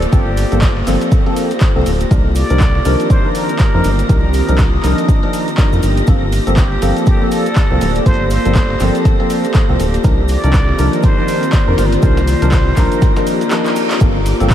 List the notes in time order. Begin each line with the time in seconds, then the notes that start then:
Already playing: A#3 F4 G4 A4 C5 D5 A#6, downlifter
0.02 closed hi-hat, cabasa
0.12 G1 F3 A#3 C4 G4 A4, kick, closed hi-hat, cabasa
0.37 closed hi-hat, open hi-hat, cabasa
0.52 G1 F3 A#3 C4 A4, closed hi-hat, cabasa
0.62 kick, snare, clap, closed hi-hat, open hi-hat, cabasa
0.77 snare
0.86 G1 F3 A#3 C4 A4, clap, closed hi-hat, open hi-hat, cabasa
1.01 closed hi-hat, cabasa
1.12 kick, closed hi-hat, cabasa
1.26 F3 A#3 C4 A4, closed hi-hat
1.36 closed hi-hat, open hi-hat, cabasa
1.51 snare, closed hi-hat, cabasa
1.61 kick, snare, clap, closed hi-hat, cabasa
1.76 C2 F3 A#3 C4 A4
1.86 D1, closed hi-hat, open hi-hat, cabasa
2.01 closed hi-hat, cabasa
2.11 C2 D#3 F3 C4 D4 D#4 A#4 D5, kick, closed hi-hat, cabasa
2.35 D5, closed hi-hat, open hi-hat, cabasa
2.50 C2 F3 D4 D#4 A#4, closed hi-hat, cabasa
2.60 kick, snare, clap, closed hi-hat, cabasa
2.75 snare
2.85 C2 F3 D4 D#4 A#4, closed hi-hat, open hi-hat, cabasa
3.00 closed hi-hat, cabasa
3.10 C5, kick, closed hi-hat, cabasa
3.25 F3 D4 D#4 A#4
3.35 A#4, closed hi-hat, open hi-hat, cabasa
3.49 closed hi-hat, cabasa
3.59 kick, snare, clap, closed hi-hat, cabasa
3.74 F2 F3 D4 D#4 A#4
3.84 G1, closed hi-hat, open hi-hat, cabasa
3.99 closed hi-hat, cabasa
4.09 C2 F3 D4 D#4 A#4 D#6, kick, closed hi-hat, cabasa
4.33 closed hi-hat, open hi-hat, cabasa
4.48 C2 F3 D4 D#4 A#4, closed hi-hat, cabasa
4.58 kick, snare, clap, closed hi-hat, open hi-hat, cabasa
4.74 snare
4.83 C2 F3 D4 D#4 A#4, clap, closed hi-hat, open hi-hat, cabasa
4.98 closed hi-hat, cabasa
5.08 kick, closed hi-hat, cabasa
5.23 F3 D4 D#4 A#4, closed hi-hat
5.33 closed hi-hat, open hi-hat, cabasa
5.48 snare, closed hi-hat, cabasa
5.58 F3 D4 D#4 A#4, kick, snare, clap, closed hi-hat, cabasa
5.73 F2, cabasa
5.83 G1, closed hi-hat, open hi-hat, cabasa
5.97 closed hi-hat, cabasa
6.07 G1 F3 A#3 C4 A4 C5, kick, closed hi-hat, cabasa
6.32 closed hi-hat, open hi-hat, cabasa
6.47 G1 F3 A#3 C4 A4, closed hi-hat, cabasa
6.57 G4, kick, snare, clap, closed hi-hat, cabasa
6.66 D5
6.72 snare
6.82 G1 F3 A#3 C4 A4, closed hi-hat, open hi-hat, cabasa
6.97 closed hi-hat, cabasa
7.06 G4, kick, closed hi-hat, cabasa
7.21 F3 A#3 C4 A4
7.31 A4, closed hi-hat, open hi-hat, cabasa
7.46 closed hi-hat, cabasa
7.56 kick, snare, clap, closed hi-hat, cabasa
7.71 C2 F3 A#3 C4 A4
7.81 D1, closed hi-hat, open hi-hat, cabasa
7.95 closed hi-hat, cabasa
8.06 G1 F3 A#3 C4 A4 C5, kick, closed hi-hat, cabasa
8.30 C5, closed hi-hat, open hi-hat, cabasa
8.45 G1 F3 A#3 C4 A4, closed hi-hat, cabasa
8.55 kick, snare, clap, closed hi-hat, open hi-hat, cabasa
8.70 snare
8.80 G1 F3 A#3 C4 A4, clap, closed hi-hat, open hi-hat, cabasa
8.95 closed hi-hat, cabasa
9.05 kick, closed hi-hat, cabasa
9.20 F3 A#3 C4 A4, closed hi-hat
9.30 closed hi-hat, open hi-hat, cabasa
9.44 snare, closed hi-hat, cabasa
9.54 kick, snare, clap, closed hi-hat, cabasa
9.69 C2 F3 A#3 C4 A4
9.79 D1, closed hi-hat, open hi-hat, cabasa
9.94 closed hi-hat, cabasa
10.04 C2 D#3 F3 C4 D4 D#4 F4 A#4 D5, kick, closed hi-hat, cabasa
10.28 D5, closed hi-hat, open hi-hat, cabasa
10.44 C2 F3 D4 D#4 A#4, closed hi-hat, cabasa
10.53 kick, snare, clap, closed hi-hat, cabasa
10.69 snare
10.79 C2 F3 D4 D#4 A#4, closed hi-hat, open hi-hat, cabasa
10.93 closed hi-hat, cabasa
11.03 C5, kick, closed hi-hat, cabasa
11.18 F3 D4 D#4 A#4
11.28 closed hi-hat, open hi-hat, cabasa
11.43 closed hi-hat, cabasa
11.53 kick, snare, clap, closed hi-hat, cabasa
11.68 F2 F3 D4 D#4 A#4
11.78 G1 C5, snare, closed hi-hat, open hi-hat, cabasa
11.86 A#4
11.92 C5, snare, closed hi-hat, cabasa
12.02 C2 F3 D4 D#4 A#4, kick, closed hi-hat, cabasa
12.17 snare, closed hi-hat, cabasa
12.28 snare, open hi-hat, cabasa
12.42 C2 F3 D4 D#4 A#4, closed hi-hat, cabasa
12.52 kick, snare, clap, closed hi-hat, open hi-hat, cabasa
12.67 snare
12.77 C2 F3 D4 D#4 A#4, kick, snare, clap, closed hi-hat, open hi-hat, cabasa
12.92 closed hi-hat, cabasa
13.02 kick, snare, closed hi-hat, reverse cymbal, cabasa
13.16 F3 D4 D#4 A#4, snare, closed hi-hat, cabasa
13.27 open hi-hat, cabasa
13.41 closed hi-hat, cabasa
13.51 F3 D4 D#4 A#4, snare, clap, closed hi-hat, cabasa
13.66 clap, cabasa
13.76 closed hi-hat, open hi-hat, cabasa
13.91 clap, closed hi-hat, cabasa
14.01 G1 F3 A#3 C4 A4 C5 D6, kick, closed hi-hat, cabasa
14.13 D5
14.26 closed hi-hat, open hi-hat, cabasa
14.40 G1 F3 A#3 C4 A4, closed hi-hat, cabasa
14.50 kick, snare, clap, closed hi-hat, cabasa